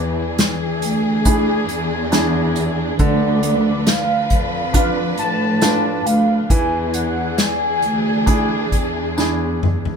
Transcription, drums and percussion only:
0.38 snare loud
0.38 closed hi-hat medium
0.38 tambourine medium
0.82 closed hi-hat medium
1.25 kick medium
1.25 closed hi-hat medium
1.69 closed hi-hat medium
2.12 snare loud
2.12 closed hi-hat medium
2.12 tambourine medium
2.56 closed hi-hat medium
2.99 kick medium
2.99 closed hi-hat medium
3.43 closed hi-hat medium
3.87 snare loud
3.87 closed hi-hat loud
3.87 tambourine medium
4.30 kick medium
4.30 closed hi-hat medium
4.74 kick medium
4.74 closed hi-hat medium
5.18 closed hi-hat medium
5.61 snare loud
5.61 closed hi-hat medium
5.61 tambourine medium
6.06 closed hi-hat medium
6.50 kick medium
6.50 closed hi-hat medium
6.94 closed hi-hat medium
7.38 snare loud
7.38 closed hi-hat medium
7.38 tambourine medium
7.82 closed hi-hat medium
8.27 kick medium
8.27 closed hi-hat medium
8.72 kick medium
8.72 closed hi-hat medium
9.18 snare medium
9.18 tambourine medium
9.63 mid tom medium
9.85 floor tom medium

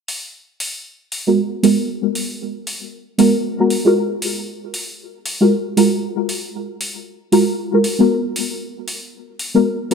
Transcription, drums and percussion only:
0.08 open hi-hat medium
0.60 open hi-hat medium
1.12 open hi-hat loud
1.64 open hi-hat medium
2.15 open hi-hat loud
2.67 open hi-hat medium
3.19 open hi-hat loud
3.70 open hi-hat medium
4.22 open hi-hat loud
4.74 open hi-hat loud
5.26 open hi-hat loud
5.77 open hi-hat loud
6.29 open hi-hat loud
6.81 open hi-hat medium
7.32 open hi-hat loud
7.84 open hi-hat loud
8.36 open hi-hat loud
8.88 open hi-hat loud
9.39 open hi-hat medium

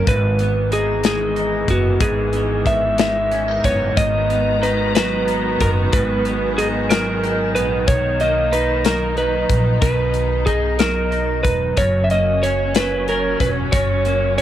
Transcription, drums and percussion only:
0.07 kick loud
0.07 closed hi-hat medium
0.39 closed hi-hat medium
0.72 closed hi-hat medium
1.04 snare loud
1.04 closed hi-hat medium
1.36 closed hi-hat soft
1.68 kick medium
1.68 closed hi-hat medium
2.00 kick loud
2.00 closed hi-hat medium
2.33 closed hi-hat soft
2.66 kick medium
2.66 closed hi-hat medium
2.98 snare loud
2.98 closed hi-hat medium
3.31 closed hi-hat soft
3.64 kick medium
3.64 closed hi-hat medium
3.97 kick loud
3.97 closed hi-hat loud
4.30 closed hi-hat soft
4.63 closed hi-hat medium
4.95 snare loud
4.95 closed hi-hat medium
5.28 closed hi-hat soft
5.60 kick medium
5.60 closed hi-hat medium
5.93 kick loud
5.93 closed hi-hat loud
6.25 closed hi-hat medium
6.58 closed hi-hat medium
6.90 snare loud
6.90 closed hi-hat medium
7.24 closed hi-hat soft
7.56 closed hi-hat medium
7.88 kick loud
7.88 closed hi-hat loud
8.20 closed hi-hat soft
8.53 closed hi-hat medium
8.85 snare loud
8.85 closed hi-hat medium
9.17 closed hi-hat soft
9.49 kick medium
9.49 closed hi-hat medium
9.82 kick loud
9.82 closed hi-hat medium
10.14 closed hi-hat soft
10.47 kick medium
10.47 closed hi-hat medium
10.79 snare loud
10.79 closed hi-hat medium
11.12 closed hi-hat soft
11.45 kick medium
11.45 closed hi-hat medium
11.77 kick loud
11.77 closed hi-hat medium
12.10 closed hi-hat soft
12.43 closed hi-hat medium
12.75 snare loud
12.75 closed hi-hat medium
13.08 closed hi-hat soft
13.40 kick medium
13.40 closed hi-hat medium
13.72 kick loud
13.72 closed hi-hat loud
14.05 closed hi-hat soft
14.38 closed hi-hat medium

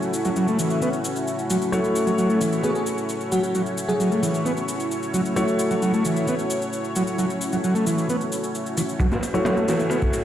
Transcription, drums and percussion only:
0.02 shaker soft
0.14 shaker medium
0.25 shaker soft
0.36 shaker soft
0.48 shaker soft
0.59 shaker medium
0.70 shaker soft
0.82 shaker soft
0.93 shaker soft
1.05 shaker medium
1.16 shaker soft
1.27 shaker soft
1.39 shaker soft
1.50 shaker medium
1.62 shaker soft
1.73 shaker soft
1.84 shaker soft
1.96 shaker medium
2.07 shaker soft
2.18 shaker soft
2.30 shaker soft
2.41 shaker medium
2.52 shaker soft
2.64 shaker soft
2.75 shaker soft
2.86 shaker medium
2.98 shaker soft
3.09 shaker soft
3.21 shaker soft
3.32 shaker medium
3.43 shaker soft
3.55 shaker soft
3.66 shaker soft
3.78 shaker medium
3.89 shaker soft
4.00 shaker soft
4.12 shaker soft
4.23 shaker medium
4.34 shaker soft
4.46 shaker soft
4.57 shaker soft
4.68 shaker medium
4.80 shaker soft
4.91 shaker soft
5.03 shaker soft
5.14 shaker medium
5.25 shaker soft
5.36 shaker soft
5.48 shaker soft
5.59 shaker medium
5.71 shaker soft
5.82 shaker soft
5.94 shaker soft
6.05 shaker medium
6.16 shaker soft
6.28 shaker soft
6.39 shaker soft
6.50 shaker medium
6.62 shaker soft
6.73 shaker soft
6.84 shaker soft
6.96 shaker medium
7.07 shaker soft
7.19 shaker soft
7.30 shaker soft
7.41 shaker medium
7.52 shaker soft
7.64 shaker soft
7.75 shaker soft
7.87 shaker medium
7.98 shaker soft
8.09 shaker soft
8.21 shaker soft
8.32 shaker medium
8.44 shaker soft
8.55 shaker soft
8.66 shaker soft
8.77 shaker medium
8.89 shaker soft
8.99 kick loud
8.99 ride medium
8.99 shaker soft
9.12 snare soft
9.12 shaker soft
9.22 ride medium
9.22 shaker medium
9.35 shaker soft
9.45 snare medium
9.45 ride medium
9.45 shaker soft
9.57 shaker soft
9.68 snare soft
9.68 ride medium
9.68 shaker medium
9.79 shaker soft
9.90 ride medium
9.90 shaker soft
10.02 kick medium
10.02 shaker soft
10.13 ride medium
10.13 shaker medium

